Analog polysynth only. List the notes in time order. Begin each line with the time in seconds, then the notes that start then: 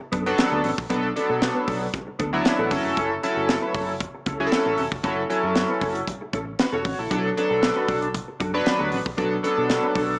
0.26 F#3 B3 D4 A4
0.90 F#3 B3 D4 A4
1.16 F#3 B3 D4 A4
2.33 F#3 B3 D4 E4
2.71 F#3 C#4 E4 A4
3.23 F#3 C#4 E4 A4
4.40 F#3 C#4 E4 G#4
4.47 A4
5.04 F#3 C#4 E4 A4
5.29 F#3 C#4 E4 A4
6.60 F#4 B4
6.73 F#4 C#5
6.99 E4 A4
7.11 F#3 B3 D4 A4
7.37 F#3 B3 D4 A4
8.54 F#3 B3 D4 B4
9.18 F#3 B3 D4 A4
9.43 F#3 B3 D4 A4